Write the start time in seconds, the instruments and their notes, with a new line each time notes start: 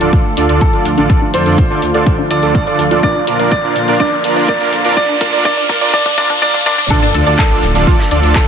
Already playing: analog synth pad D3 F3 A3 F4, grand piano A4, riser
0.01 detuned saw bass D1, supersaw synth D3 D4 F4 A4 D5, closed hi-hat
0.13 supersaw synth D3 D4 F4 A4, synth arpeggio sound F4, kick, closed hi-hat
0.37 detuned saw bass D2, supersaw synth D3 D4 F4 A4 D5, synth arpeggio sound D4, open hi-hat
0.49 detuned saw bass D2, supersaw synth D3 D4 F4 A4 D5, closed hi-hat
0.61 synth arpeggio sound F4, grand piano A4, kick, closed hi-hat
0.73 supersaw synth D3 D4 F4 A4 D5, synth arpeggio sound A4, closed hi-hat
0.85 detuned saw bass D2, synth arpeggio sound D5, open hi-hat
0.98 detuned saw bass A1, supersaw synth D3 D4 F4 A4 D5, synth arpeggio sound D4, closed hi-hat
1.10 supersaw synth D3 D4 F4 A4 D5, synth arpeggio sound F4, kick, closed hi-hat
1.22 synth arpeggio sound D4
1.34 detuned saw bass F2, supersaw synth D3 D4 F4 A4 D5, synth arpeggio sound F4, grand piano C5, open hi-hat
1.46 detuned saw bass F2, supersaw synth D3 D4 F4 A4 D5, synth arpeggio sound A4, closed hi-hat
1.58 kick, closed hi-hat
1.70 supersaw synth D3 D4 F4 A4 D5
1.82 detuned saw bass D2, synth arpeggio sound D5, open hi-hat
1.94 detuned saw bass D2, supersaw synth D3 D4 F4 A4 D5, synth arpeggio sound A4, closed hi-hat
2.06 supersaw synth D3 D4 F4, synth arpeggio sound F4, kick, closed hi-hat
2.19 synth arpeggio sound D4
2.31 detuned saw bass D2, supersaw synth D3 D4 F4 A4 D5, synth arpeggio sound F4, grand piano D5, open hi-hat
2.43 detuned saw bass D2, supersaw synth D3 D4 F4 A4 D5, synth arpeggio sound A4, closed hi-hat
2.55 kick, closed hi-hat
2.67 supersaw synth D3 D4 F4 A4 D5, synth arpeggio sound D5, closed hi-hat
2.79 detuned saw bass D2, synth arpeggio sound A4, open hi-hat
2.91 detuned saw bass D2, supersaw synth A#2 D4 F4 A4 D5, synth arpeggio sound F4, closed hi-hat
3.03 supersaw synth A#2 D4 F4 A#4, analog synth pad A#3, synth arpeggio sound D4, grand piano D5, kick, closed hi-hat
3.15 synth arpeggio sound D4
3.27 detuned saw bass A#1, supersaw synth A#2 D4 F4 A#4 D5, synth arpeggio sound A#4, open hi-hat
3.39 detuned saw bass A#1, supersaw synth A#2 D4 F4 A#4 D5, synth arpeggio sound D5, closed hi-hat
3.52 synth arpeggio sound A#4, grand piano D5, kick, closed hi-hat
3.64 supersaw synth A#2 D4 F4 A#4 D5
3.76 detuned saw bass A#2, open hi-hat
3.88 supersaw synth A#2 D4 F4 A#4 D5, detuned saw bass A#2, closed hi-hat
4.00 synth arpeggio sound D4, supersaw synth D4 F4 A#4 D5, grand piano D5, kick, closed hi-hat
4.12 synth arpeggio sound D4
4.24 detuned saw bass A#1, supersaw synth A#2 D4 F4 A#4 D5, synth arpeggio sound A#4, open hi-hat
4.36 detuned saw bass A#1, supersaw synth A#2 D4 F4 A#4 D5, synth arpeggio sound D5, closed hi-hat
4.48 synth arpeggio sound A#4, grand piano D5, kick, closed hi-hat
4.61 supersaw synth A#2 D4 F4 A#4 D5, closed hi-hat
4.73 detuned saw bass A#1, open hi-hat
4.85 detuned saw bass F2, supersaw synth A#2 D4 F4 A#4 D5, closed hi-hat
4.97 supersaw synth A#2 D4 D5, synth arpeggio sound D4, grand piano D5, kick, closed hi-hat
5.09 synth arpeggio sound D4
5.21 detuned saw bass D2, supersaw synth A#2 D4 F4 A#4 D5, synth arpeggio sound A#4, kick, open hi-hat
5.33 detuned saw bass D2, supersaw synth A#2 D4 F4 A#4 D5, synth arpeggio sound D5, closed hi-hat
5.45 supersaw synth A#2 D4 F4 A#4 D5, synth arpeggio sound D4, grand piano D5, kick, closed hi-hat
5.57 synth arpeggio sound D4, closed hi-hat
5.69 detuned saw bass A#1, supersaw synth A#2 D4 F4 A#4 D5, synth arpeggio sound A#4, kick, open hi-hat
5.81 detuned saw bass A#1, supersaw synth A#2 D4 F4 A#4 D5, synth arpeggio sound D5, closed hi-hat
5.93 synth arpeggio sound D4, supersaw synth F4, grand piano D5, kick, closed hi-hat
6.06 synth arpeggio sound D4, kick
6.18 detuned saw bass A#1, supersaw synth A#2 D4 F4 A#4 D5, synth arpeggio sound D4, grand piano D5, kick, open hi-hat
6.30 detuned saw bass A#1, synth arpeggio sound D4, kick, closed hi-hat
6.42 supersaw synth A#2 D4 F4 A#4 D5, synth arpeggio sound D4, grand piano D5, kick, closed hi-hat
6.54 synth arpeggio sound D4, kick, closed hi-hat
6.66 detuned saw bass A#1, supersaw synth A#2 D4 F4 A#4 D5, synth arpeggio sound D4, grand piano D5, kick, open hi-hat
6.78 detuned saw bass A#1, synth arpeggio sound D4, kick, closed hi-hat
6.90 analog synth pad D3 F3 A3 F4, supersaw synth D3 D4 F4 A4 D5, synth arpeggio sound D4, grand piano A4, kick, closed hi-hat, crash, sub drop, shaker
7.02 synth arpeggio sound D4, closed hi-hat, shaker
7.14 detuned saw bass D2, supersaw synth D3 D4 F4 A4 D5, synth arpeggio sound A4, closed hi-hat, open hi-hat
7.27 detuned saw bass D2, supersaw synth D3 D4 F4 A4 D5, synth arpeggio sound D5, closed hi-hat, shaker
7.39 grand piano A4, synth arpeggio sound A4, kick, snare, clap, closed hi-hat, shaker
7.51 supersaw synth D3 D4 F4 A4 D5, shaker
7.63 detuned saw bass D1, closed hi-hat, open hi-hat
7.75 detuned saw bass D1, supersaw synth D3 D4 F4 A4 D5, closed hi-hat, shaker
7.87 supersaw synth D3 D4 F4 A4 D5, synth arpeggio sound F4, kick, closed hi-hat, shaker
7.99 snare, shaker
8.11 detuned saw bass D2, supersaw synth D3 D4 F4 A4 D5, synth arpeggio sound D4, closed hi-hat, open hi-hat
8.23 detuned saw bass D2, supersaw synth D3 D4 F4 A4 D5, closed hi-hat, shaker
8.35 synth arpeggio sound F4, grand piano A4, kick, snare, clap, closed hi-hat, shaker